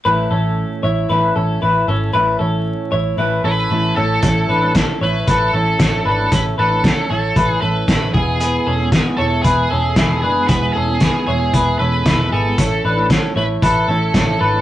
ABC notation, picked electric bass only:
X:1
M:4/4
L:1/16
Q:1/4=115
K:A
V:1 name="Picked electric bass" clef=bass
A,,,2 A,,,3 z A,,,2 A,,,2 A,,,2 A,,,2 G,,,2 | A,,,2 A,,,3 z A,,,2 A,,,2 A,,,2 A,,,2 A,,,2 | A,,,2 A,,,3 z A,,,2 A,,,2 A,,,2 A,,,2 G,,,2 | A,,,2 A,,,3 z A,,,2 A,,,2 A,,,2 A,,,2 E,,,2- |
E,,,2 E,,,3 z E,,,2 E,,,2 E,,,2 E,,,2 F,,,2 | E,,,2 E,,,3 z E,,,2 E,,,2 E,,,2 E,,,2 G,,,2 | A,,,2 A,,,3 z A,,,2 A,,,2 A,,,2 A,,,2 G,,,2 |]